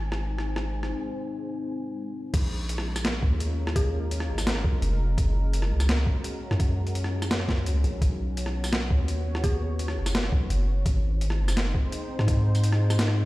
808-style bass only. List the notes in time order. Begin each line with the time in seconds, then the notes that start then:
Already playing: G#1
2.34 A#1
3.22 D#2
4.29 G#1
4.64 A#1
4.82 F1
5.18 F#1
5.71 C#2
6.51 F#2
7.66 C#2
7.84 A#1
8.02 B1
8.90 D#2
9.97 F#1
10.32 B1
10.50 F#1
10.86 G#1
11.39 F#1
12.19 G#2